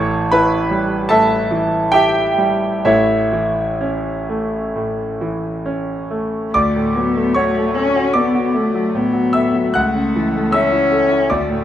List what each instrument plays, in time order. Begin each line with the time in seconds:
Already playing: grand piano A1 A2 E3 C#5 A5 C#6
0.32 grand piano E4 B4 B5
0.71 grand piano G3
1.09 grand piano A2 A4 E5 A5
1.51 grand piano E3
1.92 grand piano E4 G4 E5 G5
2.38 grand piano G3
2.85 grand piano A1 A2 E4 C#5 E5
3.33 grand piano E3
3.81 grand piano C#4
4.29 grand piano A3
4.76 grand piano A2
5.21 grand piano E3
5.66 grand piano C#4
6.11 grand piano A3
6.52 grand piano D2 D5 D6, cello A3
6.76 grand piano A2
6.94 grand piano F#3, cello B3
7.16 grand piano A3
7.34 cello A3, grand piano F#4 C#5 C#6
7.57 grand piano A3
7.74 cello C#4, grand piano A4
7.96 grand piano F#4
8.13 cello B3, grand piano A4 D5 D6
8.35 grand piano F#4
8.54 grand piano A3, cello A3
8.74 grand piano F#3
8.95 grand piano A2, cello B3
9.13 grand piano F#3
9.33 grand piano A2 E5 E6
9.55 grand piano F#3
9.74 grand piano C#2 F#5 F#6, cello A3
9.95 grand piano C#3
10.16 grand piano E3
10.35 grand piano A3
10.52 cello C#4, grand piano A4 E5 E6
10.72 grand piano E4
10.92 grand piano A4
11.12 grand piano E4
11.30 grand piano D2 D5 D6, cello A3
11.50 grand piano A2